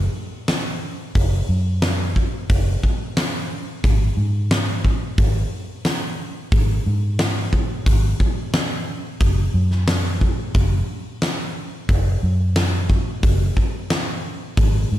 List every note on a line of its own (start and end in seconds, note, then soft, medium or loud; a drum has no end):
0.48 snare loud
0.48 open hi-hat medium
1.15 1.41 F#1 medium
1.15 kick loud
1.15 open hi-hat medium
1.49 2.26 F#2 medium
1.82 snare loud
1.82 open hi-hat medium
2.16 kick medium
2.50 2.75 F#1 medium
2.50 kick loud
2.50 open hi-hat medium
2.83 kick medium
3.17 snare loud
3.17 open hi-hat medium
3.84 4.09 G#1 medium
3.84 kick loud
3.84 open hi-hat medium
4.17 4.94 G#2 medium
4.51 snare loud
4.51 open hi-hat medium
4.85 kick medium
5.18 5.44 G#1 medium
5.18 kick loud
5.18 open hi-hat soft
5.85 snare loud
5.85 open hi-hat medium
6.52 6.78 G#1 medium
6.52 kick loud
6.52 open hi-hat medium
6.87 7.63 G#2 medium
7.19 snare loud
7.19 open hi-hat medium
7.53 kick medium
7.86 8.12 G#1 medium
7.86 kick loud
7.86 open hi-hat medium
8.20 kick medium
8.54 snare loud
8.54 open hi-hat medium
9.20 9.46 F#1 medium
9.20 kick loud
9.20 open hi-hat medium
9.54 10.31 F#2 medium
9.71 snare soft
9.88 snare loud
9.88 open hi-hat medium
10.21 kick medium
10.54 10.80 F#1 medium
10.54 kick loud
10.54 open hi-hat medium
11.22 snare loud
11.22 open hi-hat medium
11.89 12.15 F#1 medium
11.89 kick loud
11.89 open hi-hat medium
12.23 13.00 F#2 medium
12.56 snare loud
12.56 open hi-hat medium
12.90 kick medium
13.23 13.49 F#1 medium
13.23 kick loud
13.23 open hi-hat medium
13.57 kick medium
13.90 snare loud
13.90 open hi-hat medium
14.57 14.83 G#1 medium
14.57 kick loud
14.57 open hi-hat medium
14.92 14.99 G#2 medium